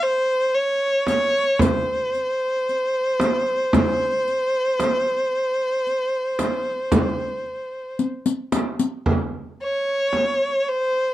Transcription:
0.03 violin C5
0.54 violin C#5
1.07 violin C#5, riq, frame drum
1.59 violin C5, riq, frame drum
2.14 riq
2.69 riq
3.20 riq, frame drum
3.73 riq, frame drum
4.28 riq
4.79 riq, frame drum
5.87 riq
6.39 riq, frame drum
6.92 riq, frame drum
7.99 riq
8.26 riq
8.52 riq, frame drum
8.79 riq
9.06 frame drum
9.63 violin C#5
10.13 frame drum
10.60 violin C#5
10.69 violin C5

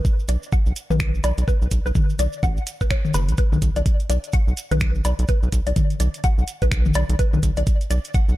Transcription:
0.05 kick, cabasa
0.19 cabasa
0.28 analog synth bass B1, synth arpeggio sound D5, closed hi-hat, cabasa
0.43 cabasa
0.52 synth arpeggio sound F#5, kick, cabasa
0.66 analog synth bass B1, cabasa
0.76 closed hi-hat, cabasa
0.90 analog synth bass B1, synth arpeggio sound B4, mid tom, cabasa
1.00 finger snap, kick, cabasa
1.14 analog synth bass A1, cabasa
1.24 analog synth bass B1, synth arpeggio sound D5, closed hi-hat, cabasa, low woodblock
1.38 analog synth bass B1, closed hi-hat, cabasa
1.48 synth arpeggio sound B4, kick, cabasa
1.62 analog synth bass B1, cabasa
1.71 analog synth bass B1, kick, closed hi-hat, cabasa
1.86 analog synth bass B1, synth arpeggio sound B4, cabasa
1.95 kick, mid tom, cabasa
2.10 cabasa
2.19 analog synth bass B1, synth arpeggio sound D5, closed hi-hat, cabasa
2.33 cabasa
2.43 analog synth bass A1, synth arpeggio sound F#5, kick, cabasa
2.57 cabasa
2.67 closed hi-hat, cabasa
2.81 synth arpeggio sound B4, kick, cabasa
2.90 synth arpeggio sound C#5, finger snap, kick, cabasa
3.05 mid tom, cabasa
3.14 analog synth bass F#1, synth arpeggio sound B4, closed hi-hat, cabasa, low woodblock
3.28 analog synth bass B1, closed hi-hat, cabasa
3.37 synth arpeggio sound B4, kick, closed hi-hat, cabasa
3.52 analog synth bass B1, mid tom, cabasa
3.62 analog synth bass B1, kick, closed hi-hat, cabasa
3.76 analog synth bass B1, synth arpeggio sound D5, closed hi-hat, cabasa
3.86 kick, closed hi-hat, cabasa
4.00 closed hi-hat, cabasa
4.10 analog synth bass B1, synth arpeggio sound D5, closed hi-hat, cabasa
4.24 closed hi-hat, cabasa
4.33 synth arpeggio sound F#5, kick, closed hi-hat, cabasa
4.48 analog synth bass B1, cabasa
4.57 closed hi-hat, cabasa
4.71 analog synth bass B1, synth arpeggio sound B4, closed hi-hat, mid tom, cabasa
4.80 finger snap, kick, closed hi-hat, cabasa
4.95 analog synth bass A1, cabasa
5.05 analog synth bass B1, synth arpeggio sound D5, closed hi-hat, cabasa, low woodblock
5.19 analog synth bass B1, closed hi-hat, cabasa
5.28 synth arpeggio sound B4, kick, closed hi-hat, cabasa
5.43 analog synth bass B1, cabasa
5.52 analog synth bass B1, kick, closed hi-hat, cabasa
5.67 analog synth bass B1, synth arpeggio sound D5, closed hi-hat, cabasa
5.76 kick, closed hi-hat, mid tom, cabasa
5.90 closed hi-hat, cabasa
6.00 analog synth bass B1, synth arpeggio sound D5, closed hi-hat, cabasa
6.14 closed hi-hat, cabasa
6.24 synth arpeggio sound F#5, kick, closed hi-hat, cabasa
6.38 analog synth bass B1, cabasa
6.48 closed hi-hat, cabasa
6.62 analog synth bass B1, synth arpeggio sound B4, kick, closed hi-hat, cabasa
6.72 finger snap, kick, closed hi-hat, cabasa
6.85 analog synth bass A1, mid tom, cabasa
6.94 analog synth bass B1, synth arpeggio sound D5, closed hi-hat, cabasa, low woodblock
7.09 analog synth bass B1, closed hi-hat, cabasa
7.19 synth arpeggio sound B4, kick, closed hi-hat, cabasa
7.33 analog synth bass B1, mid tom, cabasa
7.43 analog synth bass B1, kick, closed hi-hat, cabasa
7.56 analog synth bass B1, synth arpeggio sound D5, closed hi-hat, cabasa
7.67 kick, closed hi-hat, cabasa
7.81 closed hi-hat, cabasa
7.90 analog synth bass B1, synth arpeggio sound D5, closed hi-hat, cabasa
8.05 closed hi-hat, cabasa
8.14 synth arpeggio sound F#5, kick, closed hi-hat, cabasa
8.29 analog synth bass B1, cabasa

